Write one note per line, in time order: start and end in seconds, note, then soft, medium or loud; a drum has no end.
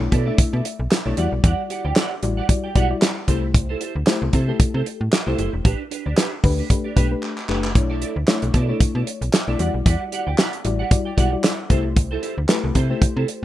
0.00 0.09 B1 medium
0.00 0.14 A3 medium
0.00 0.14 D4 medium
0.00 0.14 E4 medium
0.00 0.14 C#5 loud
0.00 muted clean electric guitar stroke soft
0.11 0.31 B2 medium
0.11 0.27 E4 medium
0.11 0.26 A4 medium
0.11 0.25 D5 medium
0.11 kick medium
0.11 closed hi-hat medium
0.26 0.82 A3 medium
0.26 0.82 D4 medium
0.26 0.82 E4 medium
0.26 0.37 E4 medium
0.26 0.38 A4 medium
0.26 0.37 D5 medium
0.26 0.83 E5 loud
0.38 0.44 B2 soft
0.38 muted clean electric guitar stroke soft
0.38 kick loud
0.38 closed hi-hat loud
0.53 0.62 B2 medium
0.53 0.63 E4 medium
0.53 0.64 A4 medium
0.53 0.65 D5 medium
0.64 muted clean electric guitar stroke soft
0.64 closed hi-hat medium
0.79 0.88 B1 medium
0.79 muted clean electric guitar stroke soft
0.91 snare loud
0.91 clap medium
0.91 closed hi-hat loud
1.05 1.14 B1 medium
1.05 1.17 A3 medium
1.05 1.17 D4 medium
1.05 1.17 E4 medium
1.05 1.21 E4 medium
1.05 1.17 A4 medium
1.05 1.18 C#5 loud
1.05 1.17 D5 medium
1.17 1.28 E2 loud
1.17 2.02 G3 medium
1.17 2.02 E4 medium
1.17 2.03 F#4 medium
1.17 1.31 G4 medium
1.17 1.31 D5 medium
1.17 2.03 D5 loud
1.17 1.31 F#5 medium
1.17 closed hi-hat medium
1.32 1.41 B1 medium
1.32 muted clean electric guitar stroke soft
1.44 1.54 E2 loud
1.44 1.61 G4 medium
1.44 1.61 D5 medium
1.44 1.61 F#5 medium
1.44 kick loud
1.44 closed hi-hat medium
1.70 1.84 G4 medium
1.70 1.84 D5 medium
1.70 1.84 F#5 medium
1.70 closed hi-hat medium
1.84 1.93 D2 medium
1.84 1.95 G4 medium
1.84 1.96 D5 medium
1.84 1.95 G5 medium
1.96 2.13 G4 medium
1.96 2.11 D5 medium
1.96 2.10 F#5 medium
1.96 snare loud
1.96 clap loud
1.96 closed hi-hat medium
2.11 muted clean electric guitar stroke soft
2.22 2.42 A1 loud
2.22 2.42 G3 medium
2.22 2.42 E4 medium
2.22 2.42 F#4 medium
2.22 2.43 D5 loud
2.22 muted clean electric guitar stroke soft
2.22 closed hi-hat medium
2.37 2.48 G4 medium
2.37 2.49 D5 medium
2.37 2.48 F#5 medium
2.49 2.68 G3 medium
2.49 2.68 E4 medium
2.49 2.69 F#4 medium
2.49 2.69 D5 medium
2.49 muted clean electric guitar stroke soft
2.49 kick loud
2.49 closed hi-hat loud
2.64 2.74 G4 soft
2.64 2.75 D5 medium
2.64 2.74 G5 medium
2.75 2.94 B1 medium
2.75 2.86 G3 medium
2.75 2.86 E4 medium
2.75 2.86 F#4 medium
2.75 2.92 G4 loud
2.75 2.86 D5 loud
2.75 2.90 D5 medium
2.75 2.89 F#5 loud
2.75 kick medium
2.75 closed hi-hat medium
2.90 3.18 G3 medium
2.90 3.18 E4 medium
2.90 3.18 F#4 medium
2.90 3.18 D5 loud
2.90 muted clean electric guitar stroke soft
3.02 muted clean electric guitar stroke soft
3.02 snare loud
3.02 clap loud
3.02 closed hi-hat loud
3.16 muted clean electric guitar stroke soft
3.27 3.76 C2 medium
3.27 3.92 A3 medium
3.27 3.92 E4 medium
3.27 3.45 E4 medium
3.27 3.92 G4 medium
3.27 3.43 A4 medium
3.27 3.92 C5 medium
3.27 3.42 C5 medium
3.27 kick medium
3.27 closed hi-hat medium
3.43 muted clean electric guitar stroke soft
3.54 muted clean electric guitar stroke soft
3.54 kick loud
3.54 closed hi-hat medium
3.69 3.79 E4 medium
3.69 3.80 A4 medium
3.69 3.81 C5 medium
3.81 3.94 E4 medium
3.81 3.95 A4 medium
3.81 3.95 C5 medium
3.81 closed hi-hat medium
3.96 4.04 D2 medium
3.96 muted clean electric guitar stroke soft
4.06 4.35 A3 medium
4.06 4.35 E4 medium
4.06 4.35 G4 medium
4.06 4.35 C5 medium
4.06 muted clean electric guitar stroke medium
4.06 snare loud
4.06 clap medium
4.06 closed hi-hat medium
4.22 4.30 C2 loud
4.22 muted clean electric guitar stroke soft
4.33 4.52 C3 loud
4.33 4.49 E4 medium
4.33 4.48 A4 medium
4.33 4.47 C5 medium
4.33 kick medium
4.33 closed hi-hat medium
4.48 5.03 A3 medium
4.48 5.03 E4 medium
4.48 4.59 E4 medium
4.48 5.03 G4 medium
4.48 5.04 A4 medium
4.48 4.59 A4 medium
4.48 4.59 C5 medium
4.60 4.66 C3 soft
4.60 muted clean electric guitar stroke soft
4.60 kick loud
4.60 closed hi-hat loud
4.74 4.83 C3 medium
4.74 4.85 E4 medium
4.74 4.86 A4 medium
4.74 4.86 C5 medium
4.86 muted clean electric guitar stroke soft
4.86 closed hi-hat medium
5.01 5.09 A2 medium
5.01 muted clean electric guitar stroke soft
5.12 snare loud
5.12 clap loud
5.12 closed hi-hat medium
5.26 5.35 C2 medium
5.26 5.65 A3 medium
5.26 5.65 E4 medium
5.26 5.37 E4 medium
5.26 5.65 G4 medium
5.26 5.38 A4 medium
5.26 5.39 C5 medium
5.26 5.65 C5 medium
5.38 5.49 F#1 medium
5.38 5.52 E4 medium
5.38 5.52 A4 medium
5.38 5.52 C5 medium
5.38 closed hi-hat medium
5.53 5.62 E1 medium
5.53 muted clean electric guitar stroke soft
5.65 5.75 A1 medium
5.65 5.81 D4 loud
5.65 5.82 G4 medium
5.65 5.82 B4 medium
5.65 kick loud
5.65 closed hi-hat medium
5.91 6.05 D4 medium
5.91 6.05 G4 medium
5.91 6.05 B4 medium
5.91 closed hi-hat medium
6.06 6.14 D2 medium
6.06 6.16 D4 medium
6.06 6.17 G4 medium
6.06 6.16 D5 medium
6.17 6.34 D4 medium
6.17 6.32 G4 medium
6.17 6.31 B4 loud
6.17 snare loud
6.17 clap loud
6.17 closed hi-hat medium
6.32 muted clean electric guitar stroke soft
6.43 6.62 D2 loud
6.43 6.63 A3 medium
6.43 6.63 D4 medium
6.43 6.63 G4 medium
6.43 6.63 B4 loud
6.43 kick medium
6.43 open hi-hat medium
6.58 6.69 D4 medium
6.58 6.69 G4 medium
6.58 6.69 B4 medium
6.70 6.89 A3 medium
6.70 6.89 D4 medium
6.70 6.90 G4 medium
6.70 6.90 B4 medium
6.70 muted clean electric guitar stroke soft
6.70 kick loud
6.70 closed hi-hat loud
6.84 6.95 D4 soft
6.84 6.96 G4 medium
6.84 6.95 D5 medium
6.96 7.15 B1 medium
6.96 7.07 A3 medium
6.96 7.13 D4 medium
6.96 7.07 D4 medium
6.96 7.07 G4 medium
6.96 7.11 G4 medium
6.96 7.07 B4 loud
6.96 7.09 B4 loud
6.96 kick medium
6.96 closed hi-hat medium
7.11 7.39 A3 medium
7.11 7.39 D4 medium
7.11 7.39 G4 medium
7.11 7.39 B4 medium
7.11 muted clean electric guitar stroke soft
7.22 muted clean electric guitar stroke soft
7.22 clap medium
7.37 muted clean electric guitar stroke soft
7.37 clap medium
7.48 7.77 F#1 medium
7.48 7.68 A3 loud
7.48 7.66 D4 medium
7.48 7.69 D4 medium
7.48 7.69 G4 medium
7.48 7.63 G4 medium
7.48 7.69 B4 loud
7.48 7.62 B4 medium
7.48 clap medium
7.63 muted clean electric guitar stroke soft
7.63 clap medium
7.75 8.05 B1 loud
7.75 8.14 A3 medium
7.75 8.14 D4 medium
7.75 8.14 E4 medium
7.75 8.14 C#5 medium
7.75 muted clean electric guitar stroke soft
7.75 kick loud
7.75 closed hi-hat medium
7.90 8.00 E4 medium
7.90 8.01 A4 medium
7.90 8.02 D5 medium
8.01 8.15 E4 medium
8.01 8.16 A4 medium
8.01 8.15 D5 medium
8.01 closed hi-hat medium
8.16 8.25 D2 medium
8.16 muted clean electric guitar stroke soft
8.28 8.56 A3 medium
8.28 8.56 D4 medium
8.28 8.56 E4 medium
8.28 8.56 C#5 loud
8.28 snare loud
8.28 clap medium
8.28 closed hi-hat medium
8.42 8.51 B1 loud
8.42 muted clean electric guitar stroke soft
8.42 closed hi-hat soft
8.54 8.73 B2 loud
8.54 8.69 E4 medium
8.54 8.68 A4 medium
8.54 8.67 D5 loud
8.54 kick medium
8.54 closed hi-hat medium
8.69 9.24 A3 medium
8.69 9.24 D4 medium
8.69 9.24 E4 medium
8.69 8.79 E4 medium
8.69 8.80 A4 medium
8.69 9.24 C#5 medium
8.69 8.79 D5 medium
8.80 8.86 B2 soft
8.80 kick loud
8.80 closed hi-hat loud
8.95 9.03 B2 medium
8.95 9.06 E4 medium
8.95 9.07 A4 medium
8.95 9.07 D5 medium
9.07 muted clean electric guitar stroke soft
9.07 closed hi-hat medium
9.21 9.30 B1 medium
9.21 muted clean electric guitar stroke soft
9.21 closed hi-hat soft
9.33 snare loud
9.33 clap medium
9.33 closed hi-hat medium
9.48 9.56 B1 medium
9.48 9.59 A3 medium
9.48 9.60 D4 medium
9.48 9.58 E4 medium
9.48 9.63 E4 medium
9.48 9.59 A4 medium
9.48 9.59 D5 medium
9.59 9.70 E2 loud
9.59 10.44 G3 medium
9.59 10.44 E4 medium
9.59 10.45 F#4 medium
9.59 9.73 G4 medium
9.59 10.45 D5 medium
9.59 9.74 D5 medium
9.59 9.73 F#5 medium
9.59 closed hi-hat medium
9.74 9.82 B1 medium
9.74 muted clean electric guitar stroke soft
9.86 9.96 E2 loud
9.86 10.03 G4 medium
9.86 10.03 D5 medium
9.86 10.03 F#5 medium
9.86 kick loud
9.86 closed hi-hat medium
10.12 10.26 G4 medium
10.12 10.26 D5 medium
10.12 10.26 F#5 medium
10.12 closed hi-hat medium
10.27 10.35 D2 medium
10.27 10.37 G4 soft
10.27 10.38 D5 medium
10.27 10.37 G5 medium
10.38 10.55 G4 medium
10.38 10.53 D5 medium
10.38 10.52 F#5 medium
10.38 snare loud
10.38 clap medium
10.38 closed hi-hat medium
10.53 muted clean electric guitar stroke soft
10.53 closed hi-hat soft
10.64 10.84 A1 loud
10.64 10.84 G3 medium
10.64 10.84 E4 medium
10.64 10.84 F#4 medium
10.64 10.84 D5 loud
10.64 muted clean electric guitar stroke soft
10.64 closed hi-hat medium
10.79 10.90 G4 medium
10.79 10.90 D5 medium
10.79 10.90 F#5 medium
10.91 11.10 G3 medium
10.91 11.11 E4 medium
10.91 11.11 F#4 medium
10.91 11.11 D5 loud
10.91 muted clean electric guitar stroke soft
10.91 kick loud
10.91 closed hi-hat medium
11.05 11.16 G4 medium
11.05 11.16 D5 medium
11.05 11.16 G5 medium
11.17 11.36 B1 medium
11.17 11.28 G3 medium
11.17 11.28 E4 medium
11.17 11.28 F#4 medium
11.17 11.34 G4 medium
11.17 11.32 D5 loud
11.17 11.28 D5 loud
11.17 11.31 F#5 loud
11.17 kick medium
11.17 closed hi-hat medium
11.32 11.60 G3 medium
11.32 11.60 E4 medium
11.32 11.60 F#4 medium
11.32 11.60 D5 medium
11.32 muted clean electric guitar stroke soft
11.44 snare loud
11.44 clap loud
11.44 closed hi-hat loud
11.58 muted clean electric guitar stroke medium
11.70 12.18 C2 medium
11.70 12.34 A3 medium
11.70 11.87 E4 medium
11.70 12.34 E4 medium
11.70 12.35 G4 medium
11.70 11.84 A4 loud
11.70 12.35 C5 medium
11.70 11.83 C5 medium
11.70 kick medium
11.70 closed hi-hat medium
11.84 muted clean electric guitar stroke soft
11.96 muted clean electric guitar stroke soft
11.96 kick loud
11.96 closed hi-hat medium
12.11 12.21 E4 medium
12.11 12.22 A4 medium
12.11 12.23 C5 medium
12.22 12.36 E4 medium
12.22 12.37 A4 medium
12.22 12.36 C5 medium
12.22 closed hi-hat medium
12.37 12.46 D2 medium
12.37 muted clean electric guitar stroke soft
12.49 12.77 A3 loud
12.49 12.77 E4 medium
12.49 12.77 G4 medium
12.49 12.77 B4 loud
12.49 snare loud
12.49 clap loud
12.49 closed hi-hat medium
12.64 12.72 C2 medium
12.64 muted clean electric guitar stroke soft
12.75 12.94 C3 loud
12.75 12.90 E4 medium
12.75 12.90 A4 medium
12.75 12.89 C5 loud
12.75 kick medium
12.75 closed hi-hat medium
12.90 13.45 A3 medium
12.90 13.45 E4 medium
12.90 13.01 E4 medium
12.90 13.45 G4 medium
12.90 13.01 A4 medium
12.90 13.01 C5 medium
12.90 13.45 C5 medium
13.02 13.08 C3 soft
13.02 muted clean electric guitar stroke soft
13.02 kick loud
13.02 closed hi-hat loud
13.16 13.25 C3 medium
13.16 13.27 E4 medium
13.16 13.27 A4 medium
13.16 13.28 C5 medium
13.28 muted clean electric guitar stroke soft
13.28 closed hi-hat medium